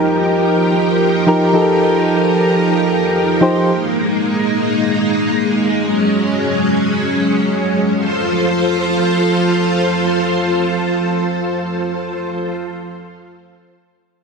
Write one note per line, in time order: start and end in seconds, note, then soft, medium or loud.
0.00 0.25 F3 medium
0.00 3.64 F3 medium
0.00 0.25 D#4 medium
0.00 3.64 D#4 medium
0.00 0.25 G4 medium
0.00 3.64 G4 medium
0.00 0.26 A#4 medium
0.00 3.64 A#4 medium
1.26 1.48 F3 medium
1.26 1.48 D#4 medium
1.26 1.49 G4 medium
1.26 1.49 A#4 medium
1.53 2.39 F3 medium
1.53 2.39 D#4 medium
1.53 2.40 G4 medium
1.53 1.61 A4 medium
1.61 2.43 A#4 medium
3.40 3.62 F3 medium
3.40 3.63 D#4 medium
3.40 3.63 G4 medium
3.40 3.63 C5 medium
3.67 7.92 G#3 medium
3.67 5.80 A#3 medium
3.67 5.80 D#4 medium
5.82 7.94 F#3 medium
5.82 7.94 C#4 medium
7.96 12.55 F3 medium
7.96 12.55 F4 medium
7.96 12.55 A4 medium
7.96 12.55 C5 medium